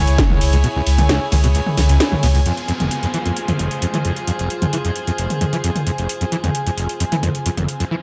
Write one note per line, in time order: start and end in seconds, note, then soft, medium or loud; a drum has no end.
0.00 2.46 E4 medium
0.00 2.46 G#4 medium
0.00 2.46 C#5 medium
0.00 7.91 G#5 medium
0.07 0.18 C#2 medium
0.07 closed hi-hat medium
0.18 0.22 C#2 medium
0.18 kick loud
0.18 snare loud
0.18 closed hi-hat medium
0.30 0.39 C#2 medium
0.30 mid tom loud
0.41 0.52 C#2 loud
0.41 open hi-hat loud
0.41 ride medium
0.53 0.64 C#2 medium
0.53 0.57 C#2 medium
0.53 closed hi-hat medium
0.64 0.68 B2 medium
0.64 closed hi-hat medium
0.76 0.82 C#2 medium
0.87 0.98 C#2 loud
0.87 open hi-hat loud
0.87 ride medium
0.98 1.09 C#2 medium
0.98 1.02 C#2 medium
0.98 closed hi-hat medium
0.98 mid tom loud
1.09 1.19 C#2 medium
1.09 snare loud
1.09 closed hi-hat medium
1.32 1.36 C#2 medium
1.32 1.43 C#2 loud
1.32 open hi-hat loud
1.32 mid tom medium
1.32 ride medium
1.44 1.55 C#2 medium
1.44 1.47 B2 medium
1.44 closed hi-hat medium
1.55 1.61 C#2 medium
1.55 closed hi-hat medium
1.66 mid tom medium
1.77 1.81 C#2 medium
1.77 1.89 C#2 loud
1.77 snare soft
1.77 open hi-hat loud
1.77 mid tom loud
1.77 ride medium
1.89 1.98 C#2 medium
1.89 2.00 C#2 medium
1.89 closed hi-hat medium
2.00 snare loud
2.00 closed hi-hat medium
2.12 2.16 C#2 medium
2.12 mid tom medium
2.23 2.34 C#2 loud
2.23 2.27 B2 medium
2.23 open hi-hat loud
2.23 ride medium
2.35 2.41 C#2 medium
2.35 2.45 C#2 medium
2.35 open hi-hat medium
2.46 2.52 F2 medium
2.46 7.91 F4 medium
2.46 closed hi-hat medium
2.46 downlifter medium
2.57 7.91 G#4 medium
2.57 closed hi-hat medium
2.68 2.72 F2 medium
2.68 closed hi-hat medium
2.80 2.89 F1 medium
2.80 7.91 C5 medium
2.80 closed hi-hat medium
2.80 mid tom medium
2.91 closed hi-hat medium
3.03 3.06 F2 medium
3.03 closed hi-hat medium
3.14 3.18 E3 medium
3.14 closed hi-hat medium
3.26 3.32 F2 medium
3.26 closed hi-hat medium
3.37 closed hi-hat medium
3.48 3.52 F2 medium
3.48 closed hi-hat medium
3.48 mid tom medium
3.59 3.69 F1 medium
3.59 closed hi-hat medium
3.59 mid tom medium
3.71 closed hi-hat medium
3.82 3.86 F2 medium
3.82 closed hi-hat medium
3.94 3.97 E3 medium
3.94 closed hi-hat medium
3.94 mid tom medium
4.05 4.11 F2 medium
4.05 closed hi-hat medium
4.16 closed hi-hat medium
4.27 4.31 F2 medium
4.27 closed hi-hat medium
4.39 4.48 F1 medium
4.39 closed hi-hat medium
4.50 closed hi-hat medium
4.62 4.66 F2 medium
4.62 closed hi-hat medium
4.62 mid tom medium
4.73 4.77 E3 medium
4.73 closed hi-hat medium
4.85 4.91 F2 medium
4.85 closed hi-hat medium
4.96 closed hi-hat medium
5.07 5.11 F2 medium
5.07 closed hi-hat medium
5.18 5.28 F1 medium
5.18 closed hi-hat medium
5.30 closed hi-hat medium
5.30 mid tom medium
5.41 5.45 F2 medium
5.41 closed hi-hat medium
5.41 mid tom medium
5.53 5.56 E3 medium
5.53 closed hi-hat medium
5.64 5.70 F2 medium
5.64 closed hi-hat medium
5.76 closed hi-hat medium
5.76 mid tom medium
5.86 5.90 F2 medium
5.86 closed hi-hat medium
5.98 6.07 F1 medium
5.98 closed hi-hat medium
6.09 closed hi-hat medium
6.09 riser medium
6.21 6.25 F2 medium
6.21 closed hi-hat medium
6.32 6.36 E3 medium
6.32 closed hi-hat medium
6.44 6.50 F2 medium
6.44 closed hi-hat medium
6.44 mid tom medium
6.55 closed hi-hat medium
6.66 6.70 F2 medium
6.66 closed hi-hat medium
6.77 6.87 F1 medium
6.77 closed hi-hat medium
6.89 closed hi-hat medium
7.00 7.04 F2 medium
7.00 closed hi-hat medium
7.12 7.16 E3 medium
7.12 closed hi-hat medium
7.12 mid tom medium
7.23 7.29 F2 medium
7.23 closed hi-hat medium
7.23 mid tom medium
7.35 closed hi-hat medium
7.46 7.50 F2 medium
7.46 closed hi-hat medium
7.57 7.66 F1 medium
7.57 closed hi-hat medium
7.57 mid tom medium
7.68 closed hi-hat medium
7.80 7.84 F2 medium
7.80 closed hi-hat medium
7.91 7.95 E3 medium